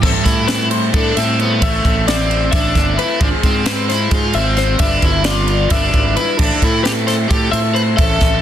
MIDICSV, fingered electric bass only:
0, 0, Header, 1, 2, 480
1, 0, Start_track
1, 0, Tempo, 454201
1, 33, Time_signature, 7, 3, 24, 8
1, 8895, End_track
2, 0, Start_track
2, 0, Title_t, "Fingered electric bass"
2, 0, Program_c, 0, 33
2, 32, Note_on_c, 0, 33, 108
2, 142, Note_off_c, 0, 33, 0
2, 269, Note_on_c, 0, 45, 96
2, 952, Note_off_c, 0, 45, 0
2, 993, Note_on_c, 0, 45, 108
2, 1214, Note_off_c, 0, 45, 0
2, 1234, Note_on_c, 0, 45, 106
2, 1675, Note_off_c, 0, 45, 0
2, 1708, Note_on_c, 0, 33, 104
2, 1932, Note_off_c, 0, 33, 0
2, 1953, Note_on_c, 0, 33, 92
2, 2634, Note_off_c, 0, 33, 0
2, 2673, Note_on_c, 0, 33, 108
2, 2895, Note_off_c, 0, 33, 0
2, 2913, Note_on_c, 0, 31, 102
2, 3135, Note_off_c, 0, 31, 0
2, 3397, Note_on_c, 0, 32, 114
2, 3507, Note_off_c, 0, 32, 0
2, 3632, Note_on_c, 0, 44, 89
2, 4313, Note_off_c, 0, 44, 0
2, 4347, Note_on_c, 0, 44, 109
2, 4571, Note_off_c, 0, 44, 0
2, 4591, Note_on_c, 0, 32, 97
2, 5033, Note_off_c, 0, 32, 0
2, 5069, Note_on_c, 0, 31, 110
2, 5292, Note_off_c, 0, 31, 0
2, 5312, Note_on_c, 0, 31, 99
2, 5993, Note_off_c, 0, 31, 0
2, 6032, Note_on_c, 0, 31, 113
2, 6254, Note_off_c, 0, 31, 0
2, 6280, Note_on_c, 0, 32, 95
2, 6498, Note_off_c, 0, 32, 0
2, 6763, Note_on_c, 0, 33, 104
2, 6870, Note_off_c, 0, 33, 0
2, 6998, Note_on_c, 0, 45, 93
2, 7675, Note_off_c, 0, 45, 0
2, 7720, Note_on_c, 0, 45, 97
2, 7937, Note_off_c, 0, 45, 0
2, 7956, Note_on_c, 0, 45, 102
2, 8393, Note_off_c, 0, 45, 0
2, 8443, Note_on_c, 0, 33, 111
2, 8658, Note_off_c, 0, 33, 0
2, 8686, Note_on_c, 0, 33, 93
2, 8895, Note_off_c, 0, 33, 0
2, 8895, End_track
0, 0, End_of_file